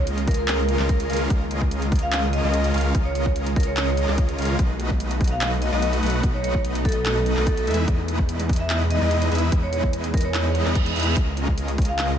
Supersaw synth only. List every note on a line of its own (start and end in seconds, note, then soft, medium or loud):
0.00 0.77 G#3 medium
0.00 0.77 C#4 medium
0.00 0.77 F4 medium
0.00 0.77 A#4 medium
0.00 0.77 D#5 loud
0.79 1.07 G#3 medium
0.79 1.07 C#4 medium
0.79 1.07 F4 medium
0.79 1.07 A#4 medium
0.79 1.07 D#5 medium
1.10 1.28 G#3 medium
1.10 1.28 C#4 medium
1.10 1.28 F4 medium
1.10 1.28 A#4 medium
1.10 1.28 F5 loud
1.30 2.41 G#3 loud
1.30 2.41 C#4 medium
1.30 2.41 F4 medium
1.30 2.41 A#4 medium
1.30 2.41 D#5 loud
2.44 2.72 G#3 medium
2.44 2.72 C#4 medium
2.44 2.72 F4 medium
2.44 2.72 A#4 medium
2.44 2.72 D#5 medium
2.74 2.92 G#3 medium
2.74 2.92 C#4 medium
2.74 2.92 F4 medium
2.74 2.92 A#4 medium
2.74 2.92 F5 loud
2.95 4.06 G#3 loud
2.95 4.06 C#4 medium
4.08 4.36 G#3 medium
4.08 4.36 C#4 medium
4.08 4.36 F4 medium
4.08 4.36 A#4 medium
4.08 4.36 D#5 loud
4.38 4.57 G#3 medium
4.38 4.57 C#4 medium
4.38 4.57 F4 medium
4.38 4.57 A#4 medium
4.38 4.57 F5 loud
4.59 5.70 D#4 medium
4.59 5.70 B4 medium
5.73 6.01 A3 medium
5.73 6.01 D#4 medium
5.73 6.01 F#4 medium
5.73 6.01 B4 medium
5.73 6.01 D#5 medium
6.03 6.21 A3 medium
6.03 6.21 D#4 medium
6.03 6.21 F#4 medium
6.03 6.21 B4 medium
6.03 6.21 F#5 loud
6.23 7.34 F#4 medium
7.37 7.65 A3 medium
7.37 7.65 D#4 medium
7.37 7.65 F#4 medium
7.37 7.65 B4 medium
7.37 7.65 D#5 medium
7.67 7.86 G#3 loud
7.67 7.86 D#4 medium
7.67 7.86 E4 medium
7.67 7.86 B4 medium
7.67 7.86 E5 loud
7.88 8.99 G#3 medium
7.88 8.99 D#4 medium
7.88 8.99 E4 medium
7.88 8.99 B4 medium
7.88 8.99 D#5 loud
9.01 9.29 G#3 medium
9.01 9.29 D#4 medium
9.01 9.29 E4 medium
9.01 9.29 B4 medium
9.01 9.29 D#5 medium
9.32 9.50 G#3 medium
9.32 9.50 D#4 medium
9.32 9.50 E4 medium
9.32 9.50 B4 medium
9.32 9.50 E5 loud
9.52 10.63 G#3 medium
9.52 10.63 D#4 medium
9.52 10.63 E4 medium
9.52 10.63 B4 medium
9.52 10.63 D#5 loud
10.66 10.94 G#3 medium
10.66 10.94 D#4 medium
10.66 10.94 E4 medium
10.66 10.94 B4 medium
10.66 10.94 D#5 medium
10.96 11.14 G#3 medium
10.96 11.14 D#4 medium
10.96 11.14 E4 medium
10.96 11.14 B4 medium
10.96 11.14 E5 loud
11.17 12.19 G#3 loud
11.17 12.19 C#4 medium
11.17 12.19 F4 medium